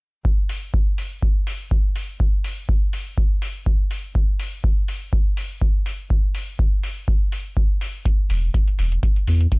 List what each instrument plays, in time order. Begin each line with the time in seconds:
0.25 kick
0.49 open hi-hat
0.74 kick
0.98 open hi-hat
1.23 kick
1.47 open hi-hat
1.71 kick
1.96 open hi-hat
2.20 kick
2.44 open hi-hat
2.69 kick
2.93 open hi-hat
3.18 kick
3.42 open hi-hat
3.66 kick
3.91 open hi-hat
4.15 kick
4.40 open hi-hat
4.64 kick
4.88 open hi-hat
5.13 kick
5.37 open hi-hat
5.62 kick
5.86 open hi-hat
6.10 kick
6.35 open hi-hat
6.59 kick
6.83 open hi-hat
7.08 kick
7.32 open hi-hat
7.57 kick
7.81 open hi-hat
8.05 kick, closed hi-hat
8.30 sub bass E1, open hi-hat
8.54 kick, closed hi-hat
8.68 closed hi-hat
8.79 sub bass E1, open hi-hat
8.92 closed hi-hat
9.03 kick, closed hi-hat
9.16 closed hi-hat
9.27 sub bass E2, open hi-hat
9.41 closed hi-hat
9.52 kick, closed hi-hat